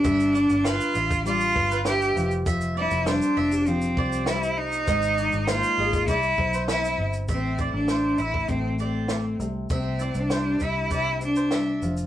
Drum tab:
SH |xxxxxxxxxx-xxxxx|xx-xxx-xxx-xxx-x|xxxxxx-xxx-xxx-x|x-x-x-x-x-x-x-x-|
SD |----o-------o---|----o-------o---|----o-------o---|----o-------o---|
BD |o------o--o-----|o---------o-----|o------oo-o-----|o-o----oo-------|

SH |x-xxx-x-x-xxx-xx|
SD |----o-------o---|
BD |o-----o-o-------|